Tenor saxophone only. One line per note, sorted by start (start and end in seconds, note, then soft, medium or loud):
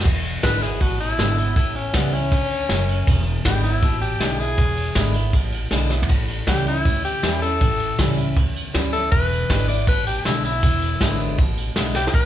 0.43 0.63 B4 loud
0.62 0.83 G#4 medium
0.81 0.99 F#4 medium
1.00 1.55 E4 loud
1.56 1.77 E4 medium
1.76 1.96 C#4 loud
1.95 2.15 B3 loud
2.13 3.23 C#4 loud
3.45 3.63 G4 loud
3.63 4.00 E4 loud
4.01 4.41 G4 loud
4.40 5.13 G#4 loud
6.48 6.66 G4 loud
6.68 7.04 E4 loud
7.04 7.41 G4 medium
7.42 8.15 A4 loud
8.93 9.11 A4 loud
9.11 9.67 B4 loud
9.68 9.87 D5 loud
9.88 10.06 B4 loud
10.07 10.25 G4 loud
10.26 10.44 E4 medium
10.45 11.18 E4 loud
11.96 12.14 G4 loud
12.14 12.26 B4 loud